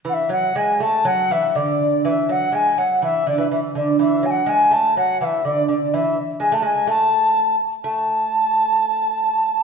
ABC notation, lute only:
X:1
M:2/4
L:1/16
Q:1/4=124
K:Emix
V:1 name="Lute" clef=bass
E,2 F,2 G,2 A,2 | F,2 E,2 D,4 | E,2 F,2 G,2 F,2 | E,2 D, E, E,2 D,2 |
E,2 F,2 G,2 A,2 | F,2 E,2 D,2 D,2 | E,2 z2 G, A, G,2 | A,6 z2 |
A,8- | A,8 |]